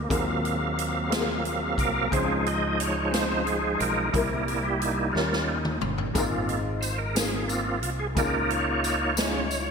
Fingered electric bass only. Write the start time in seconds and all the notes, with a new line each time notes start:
0.11 D#2
1.78 C2
2.12 C#2
3.81 B1
4.14 C2
5.15 D#2
5.82 G1
6.15 G#1
7.84 C2
8.17 C#2